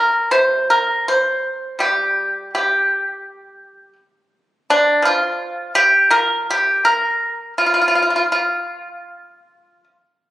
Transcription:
Already playing: G3 A#4
0.31 C3 C5
0.70 A#4
1.08 C5
1.79 G3 G4
2.55 G4
4.70 D4
5.02 F3 F4
5.75 G4
6.10 A#2 A#4
6.50 G4
6.85 A#4
7.58 F4
7.66 F4
7.74 F4
7.81 F4
7.88 F4
7.95 F4
8.02 F4
8.10 F4
8.16 F4
8.32 F4

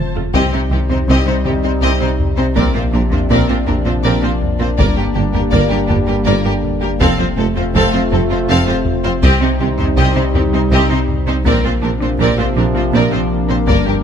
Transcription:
Already playing: F1 F3 A3 F4 C5 A5
0.16 F2 A3 F4, taiko low
0.33 C2 C3 G3 C4 D#4 G4 C5 D#5, taiko
0.52 C3 C4 D#4 C5
0.71 C2 C3 D#3 C4 G4
0.89 C3 D#3 C4 D#4 C5, taiko low
1.08 C2 C3 C4 G4 D#5, taiko
1.26 C3 G3 C4 D#4 C5
1.45 C2 C3 D#3 C4 G4, taiko low
1.63 C3 G3 C4 D#4 C5
1.81 C2 C3 C4 G4 D#5
2.00 C3 G3 C4 D#4 C5
2.19 taiko low
2.37 C3 C4 D#4 C5
2.55 A#1 A#2 F3 A#3 C4 D4 A#4 D5, taiko
2.75 A#2 C4 F4 A#4 C5
2.93 A#1 A#2 C4 D4 A#4
3.11 A#2 C4 D4 F4 C5, taiko low
3.30 A#1 A#2 A#3 C4 A#4 D5, taiko
3.49 A#2 C4 F4 C5
3.67 A#1 A#2 C4 D4 A#4, taiko low
3.85 A#2 C4 F4 C5
4.03 A#1 A#2 A#3 C4 A#4 D5
4.22 A#2 C4 F4 C5
4.42 taiko low
4.59 A#2 C4 F4 A#4 C5
4.77 G1 G2 D3 G3 A#3 A#4 D5, taiko
4.96 G2 A#3 G4 A#4
5.14 G1 G2 A#3 D4 G4
5.33 G2 A#3 G4 A#4, taiko low
5.51 G1 G2 G3 A#3 A#4 D5, taiko
5.69 G2 A#3 D4 G4 A#4
5.87 G1 G2 A#3 D4 G4, taiko low
6.06 G2 A#3 D4 G4 A#4
6.25 G1 G2 G3 A#3 A#4 D5
6.44 G2 A#3 D4 G4 A#4
6.64 taiko low
6.81 G2 A#3 G4 A#4
7.00 F1 F2 C3 F3 A3 C4 F4 A4 C5 F5, taiko
7.18 F2 C4 F4 C5
7.37 F1 F2 A3 C4 A4
7.55 F2 A3 C4 F4 C5, taiko low
7.74 F1 F2 F3 C4 A4 F5, taiko
7.92 F2 C4 F4 C5
8.11 F1 F2 A3 C4 A4, taiko low
8.30 F2 C4 F4 C5
8.48 F1 F2 F3 C4 A4 F5
8.67 F2 C4 F4 C5
8.86 taiko low
9.04 F2 C4 F4 C5
9.23 C2 C3 G3 C4 D#4 G4 D#5, taiko
9.41 C3 C4 D#4 C5
9.60 C2 C3 D#3 C4 G4
9.78 C3 D#3 C4 D#4 C5, taiko low
9.97 C2 C3 C4 G4 D#5, taiko
10.15 C3 G3 C4 D#4 C5
10.34 C2 C3 D#3 C4 G4, taiko low
10.53 C3 G3 C4 D#4 C5
10.70 C2 C3 C4 G4 D#5
10.90 C3 G3 C4 D#4 C5
11.09 taiko low
11.27 C3 C4 D#4 C5
11.45 A#1 A#2 C3 F3 A#3 C4 D4 A#4 D5, taiko
11.64 A#2 C4 F4 A#4 C5
11.81 A#1 A#2 C4 D4 A#4
12.00 A#2 C4 D4 F4 C5
12.18 A#1 A#2 A#3 C4 A#4 D5, taiko
12.38 A#2 C4 F4 C5
12.56 A#1 A#2 C4 D4 A#4
12.75 A#2 C4 F4 C5
12.93 A#1 A#2 A#3 C4 A#4 D5
13.12 A#2 C4 F4 C5
13.49 A#2 C4 F4 A#4 C5
13.67 G1 G2 D3 G3 A#3 A#4 D5, taiko
13.86 G2 A#3 G4 A#4

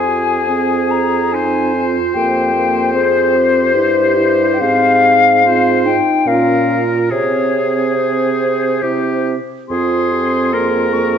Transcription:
Already playing: F2 C4 G#4 G#5
0.06 G4
0.49 C4 G#4
0.91 A#5
1.32 C4 D#4 C5 G#5
1.74 F4
2.14 F2 A#3 G4 G5
2.55 A#3
2.93 C4 G#4 C5
3.35 G4
3.74 G2 E4
4.17 E4
4.54 G5
4.60 G#2 C4 F5
5.44 C4 F4 C5
5.85 D#4 G5
6.26 A#2 C#4 F4 A#4 F5
7.11 C3 C4 G#4 C#5
7.89 C#5
7.96 C5
8.83 C3 C4 E4 G4
9.69 F2 C4 F4 G#4 C6
10.13 G4
10.53 A#3 G#4 A#4
10.93 A#3 C#6

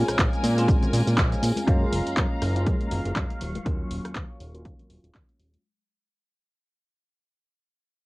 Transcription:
Already playing: G#3 C4 C#4 F4 A#4 G#5
0.08 A#1, cross-stick, closed hi-hat, tambourine, shaker
0.19 A#1, kick, clap, closed hi-hat, shaker
0.33 closed hi-hat, high conga, shaker
0.43 A#2, open hi-hat, tambourine, shaker
0.57 G#3 C4 C#4 F4, closed hi-hat, tambourine, shaker
0.68 A#1, kick, closed hi-hat, tambourine, high conga, shaker
0.83 closed hi-hat, low conga, shaker
0.93 A#2, open hi-hat, tambourine, shaker
1.07 A#2, closed hi-hat, tambourine, shaker
1.18 A#1, kick, clap, closed hi-hat, shaker
1.32 closed hi-hat, high conga, shaker
1.43 A#2, open hi-hat, tambourine, shaker
1.56 closed hi-hat, tambourine, high conga, shaker
1.67 F#2 F#3 G#3 A#3 C#4 F4 F5 A#5, kick, closed hi-hat
1.92 F#1, open hi-hat, tambourine
2.06 F#2, closed hi-hat, tambourine
2.17 F#2, kick, clap, closed hi-hat
2.42 F#1, cross-stick, open hi-hat, tambourine
2.55 G#3 A#3 C#4 F4, closed hi-hat, tambourine
2.67 F#2, kick, closed hi-hat, tambourine, high conga
2.81 closed hi-hat
2.91 F#1, open hi-hat, tambourine, low conga
3.06 F#1, closed hi-hat, tambourine
3.16 F#2, kick, clap, closed hi-hat
3.30 closed hi-hat, high conga
3.41 D#1 C#6, open hi-hat, tambourine
3.55 closed hi-hat, tambourine, high conga
3.65 D#2 F#3 A#3 C#4 F4, kick, closed hi-hat
3.91 D#1, open hi-hat, tambourine
4.05 D#2, cross-stick, closed hi-hat
4.15 D#2, kick, clap, closed hi-hat
4.40 D#1, open hi-hat
4.54 F#3 A#3 C#4 F4, closed hi-hat
4.65 D#2, kick, closed hi-hat, tambourine, high conga
4.79 closed hi-hat, low conga
4.90 D#1, open hi-hat
5.04 D#1, closed hi-hat
5.15 D#2, kick, clap, closed hi-hat
5.29 closed hi-hat, high conga
5.39 D#1, open hi-hat, tambourine
5.53 closed hi-hat, tambourine, high conga

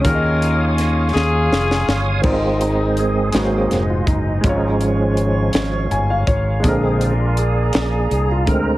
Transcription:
Already playing: D#6
0.01 D#3 C#4 F4 A#4
0.05 D#2 C#4 F4 G#4 C#5 F5 G#5, kick, closed hi-hat
0.15 D#5
0.42 closed hi-hat
0.78 snare, closed hi-hat
1.13 D#2 C#4 F4 G#4, snare
1.51 F1, snare
1.71 snare
1.88 G1, snare
2.22 G#1 G#2 D#3 G#3 C4 D#4 F4 G#4 D#5 G#5 C6 D#6, kick, crash
2.26 D5
2.33 D#5
2.61 D#4, closed hi-hat
2.97 G#4, closed hi-hat
3.32 G#1 G#2 F#3 G#3 A#3 C4 D#4 F#4 B4 D#5 F#5, snare, closed hi-hat
3.43 C5
3.71 F1, snare, closed hi-hat
3.90 F4
4.07 F#1 D#4, kick, closed hi-hat
4.41 G#1 G#3 C#4 C#5 F5 C#6, kick, closed hi-hat
4.45 G#2 F3 G#3 C#4 F4
4.49 C#5
4.81 closed hi-hat
5.17 closed hi-hat
5.53 G#1 F3 G#3 C#4, snare, closed hi-hat
5.91 G1 G#5, closed hi-hat
6.10 F5
6.27 G#1 C#5, kick, closed hi-hat
6.60 G#3 D4
6.64 A#1 A#2 D3 G#3 C4 F4 G#4 D5 G#5 A#5, kick, closed hi-hat
6.68 A#4
7.01 F4, closed hi-hat
7.37 G#4, closed hi-hat
7.73 A#1, snare, closed hi-hat
8.11 C2, closed hi-hat
8.31 F4
8.46 D2 D3 G#3 C4 A#4, kick, closed hi-hat

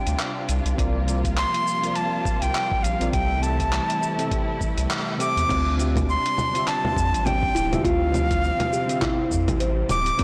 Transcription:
Already playing: C3 G3 D4 F4 G5
0.07 D2, closed hi-hat, cabasa
0.19 clap, closed hi-hat, cabasa
0.49 C2, closed hi-hat, cabasa
0.66 C2, closed hi-hat, cabasa
0.76 C2 C3 F3 G3 A#3 C4 F4 A#4 D5, kick, closed hi-hat, cabasa
1.06 C3 C4 F4 A#4 D5, closed hi-hat, cabasa
1.25 kick, closed hi-hat, cabasa
1.37 C6, clap, cabasa
1.54 closed hi-hat
1.67 cabasa
1.79 C3 C4 F4
1.84 A#4 D5, closed hi-hat, cabasa
1.95 A5, closed hi-hat, cabasa
2.25 kick, cabasa
2.42 C2 G5, closed hi-hat, cabasa
2.55 clap, closed hi-hat, cabasa
2.72 kick
2.83 A#1 F5, closed hi-hat, cabasa
2.99 A#1 C3 C4 F4 A#4 D5, closed hi-hat, cabasa
3.12 C2 C3 E3 A3 C4 E4 G4 A4 E5 G5, kick, closed hi-hat, cabasa
3.39 C3 C4 G4 A5, closed hi-hat
3.43 A4 E5, cabasa
3.60 kick, closed hi-hat, cabasa
3.73 clap, cabasa
3.90 closed hi-hat
4.03 cabasa
4.17 C3 C4 G4 A4 E5, closed hi-hat, cabasa
4.31 kick, closed hi-hat, cabasa
4.61 kick, cabasa
4.78 C2, closed hi-hat, cabasa
4.91 clap, closed hi-hat, cabasa
5.18 C3 C4 G4 A4 E5 D6, closed hi-hat, cabasa
5.37 E2, closed hi-hat, cabasa
5.47 D2 C3 D3 G3 C4 D4 F4 G4 E5, kick, closed hi-hat, crash, low conga, cabasa
5.77 D3 C4 F4 G4 E5, closed hi-hat, cabasa
5.96 kick, closed hi-hat, low conga, cabasa
6.09 C6, cabasa
6.26 closed hi-hat
6.38 low conga, cabasa
6.51 D3 C4 F4
6.55 G4 E5, closed hi-hat, cabasa
6.67 A5, clap, closed hi-hat, cabasa
6.85 low conga
6.96 F2, kick, cabasa
7.13 A1, closed hi-hat, cabasa
7.25 C4 G5, closed hi-hat, low conga, cabasa
7.43 kick
7.55 D1 E4, closed hi-hat, cabasa
7.70 D3 C4 F4 G4 E5, closed hi-hat, low conga, cabasa
7.79 D3 G5
7.83 D2 C4 F4 G4 E5 F5, kick, closed hi-hat, cabasa
8.10 D3 F3 C4
8.14 G4 F5, closed hi-hat, low conga, cabasa
8.31 kick, closed hi-hat, cabasa
8.44 cabasa
8.60 closed hi-hat, low conga
8.73 G4, cabasa
8.87 D3 C4 F4 G4, closed hi-hat, cabasa
8.91 E5
9.02 E4, kick, clap, closed hi-hat, low conga, cabasa
9.31 F2, kick, cabasa
9.48 A1, closed hi-hat, low conga, cabasa
9.60 C5, closed hi-hat, cabasa
9.89 D1 D6, closed hi-hat, low conga, cabasa
10.06 closed hi-hat, cabasa
10.17 C2 C3 F3 G3 A#3 C4 F4 A#4, kick, closed hi-hat, cabasa

